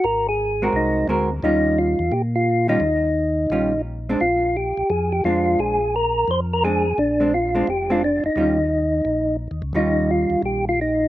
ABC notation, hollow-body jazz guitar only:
X:1
M:4/4
L:1/8
Q:"Swing" 1/4=173
K:Ebmix
V:1 name="Hollow-body jazz guitar"
z3 [A,C_GB]3 [A,CGB] z | [E,G,DF]3 z4 [E,G,DF] | z4 [E,G,DF] z2 [A,C=D] | z6 [A,C=D]2- |
[A,C=D] z4 z [A,CD] z | z [A,C=D] z [A,CD] z [A,CD] z2 | [E,G,DF] z6 z | [E,G,DF]4- [E,G,DF] z3 |]